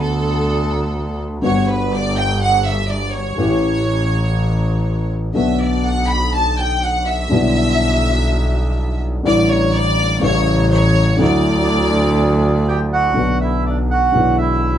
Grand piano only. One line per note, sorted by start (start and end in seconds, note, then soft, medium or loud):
0.00 1.35 D2 medium
0.00 1.35 D3 medium
0.00 1.35 A3 soft
0.00 1.35 B3 soft
0.00 1.36 F#4 medium
1.42 3.28 G1 medium
1.42 3.28 G2 medium
1.42 3.27 D3 medium
1.42 3.28 G3 soft
1.42 3.29 B3 soft
1.42 3.29 F#4 medium
3.36 5.26 A1 medium
3.36 5.26 A2 medium
3.36 5.25 E3 soft
3.36 5.25 A3 soft
3.36 5.26 C#4 soft
3.36 5.27 G4 medium
5.33 7.22 B1 medium
5.33 7.22 B2 medium
5.33 7.21 D3 medium
5.33 7.21 A3 soft
5.33 7.22 B3 soft
5.33 7.22 F#4 medium
7.29 9.15 B1 medium
7.29 9.16 B2 medium
7.29 9.14 D3 medium
7.29 9.15 G3 soft
7.29 9.16 B3 medium
7.33 9.17 E4 medium
9.23 10.17 A1 medium
9.23 10.17 A2 medium
9.23 10.16 D3 medium
9.23 10.17 G3 medium
9.23 10.18 A3 medium
9.23 10.18 E4 medium
10.20 11.14 A1 medium
10.20 11.14 A2 medium
10.20 11.13 C#3 medium
10.20 11.14 G3 medium
10.20 11.15 A3 medium
10.24 11.15 E4 medium
11.16 13.06 D2 medium
11.16 11.18 D3 medium
11.16 13.06 D3 medium
11.16 13.06 F#3 medium
11.16 13.06 A3 medium
11.21 13.07 E4 medium
13.14 14.09 B1 medium
13.14 14.10 B2 medium
13.14 14.08 D3 medium
13.14 14.09 A3 soft
13.14 14.10 B3 soft
13.18 14.10 F#4 medium
14.12 14.78 B1 medium
14.12 14.78 B2 medium
14.12 14.78 D3 medium
14.12 14.78 G#3 soft
14.12 14.78 B3 soft
14.16 14.78 E4 medium